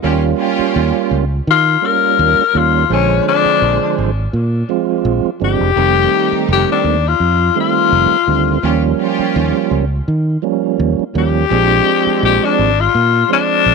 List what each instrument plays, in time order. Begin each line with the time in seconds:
0.03 fingered electric bass D#2, tonewheel organ G3 A#3 C#4 F4, string section C#4 F4 G4
0.38 string section C#4 F4 G4
0.59 muted fingered electric bass stroke
0.76 fingered electric bass D#2
1.11 fingered electric bass C#2
1.47 fingered electric bass D#3, tenor saxophone F4
1.82 tonewheel organ G3 A#3 C#4 F4, tenor saxophone A#4
2.19 fingered electric bass D#2
2.53 fingered electric bass D#2, tonewheel organ G3 A#3 C#4 F4, tenor saxophone F4
2.89 fingered electric bass A#1, tonewheel organ D3 F3 G#3 C5, string section C4 D4 G#4, tenor saxophone C#4
3.25 string section C4 D4 G#4, tenor saxophone D4
3.45 muted fingered electric bass stroke
3.62 fingered electric bass A#1
3.98 fingered electric bass G#1
4.33 fingered electric bass A#2
4.69 tonewheel organ F3 G#3 C4 F4
5.05 fingered electric bass A#1
5.25 muted fingered electric bass stroke
5.40 fingered electric bass G1, tonewheel organ F3 G#3 C4 D4
5.44 tenor saxophone G4
5.60 fingered electric bass F1
5.76 fingered electric bass F1, tonewheel organ D#3 G3 A3 C4, string section A3 D#4 G4
6.11 string section A3 D#4 G4
6.32 muted fingered electric bass stroke
6.49 fingered electric bass F1, tenor saxophone G4
6.72 tenor saxophone D4
6.84 fingered electric bass D#2
7.08 tenor saxophone F4
7.20 fingered electric bass F2
7.55 tonewheel organ D#3 G3 A3 C4
7.60 tenor saxophone F4
7.92 fingered electric bass F1
8.11 muted fingered electric bass stroke
8.27 fingered electric bass D2, tonewheel organ D#3 G3 A3 C4
8.63 fingered electric bass D#2, tonewheel organ F3 G3 A#3 C#4, string section C#4 F4 G4
8.99 string section C#4 F4 G4
9.19 muted fingered electric bass stroke
9.36 fingered electric bass D#2
9.71 fingered electric bass C#2
10.08 fingered electric bass D#3
10.42 tonewheel organ F3 G3 A#3 C#4
10.80 fingered electric bass D#2
10.99 muted fingered electric bass stroke
11.14 fingered electric bass D#2, tonewheel organ F3 G3 A#3 C#4
11.18 tenor saxophone G4
11.50 fingered electric bass A#1, tonewheel organ F3 G#3 C4 D4, string section C4 D4 G#4
11.86 string section G#3 C4 D4
12.07 muted fingered electric bass stroke
12.23 fingered electric bass A#1, tenor saxophone G4
12.44 tenor saxophone D4
12.59 fingered electric bass G#1
12.80 tenor saxophone F4
12.95 fingered electric bass A#2
13.29 tonewheel organ F3 G#3 C4 D4
13.33 tenor saxophone D4
13.66 fingered electric bass A#1